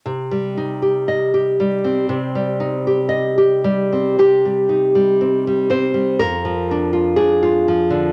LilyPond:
\new Staff \with { instrumentName = "Nylon-string guitar" } { \time 2/4 \key c \minor \tempo 4 = 60 << { r2 | r2 | g'4. c''8 | bes'4 aes'4 | } \\ { c16 g16 ees'16 g'16 ees''16 g'16 g16 c'16 | c16 g16 ees'16 g'16 ees''16 g'16 g16 c'16 | c16 g16 ees'16 g16 c'16 g16 c'16 g16 | f,16 f16 d'16 f'16 d'16 f'16 f16 d16 | } >> }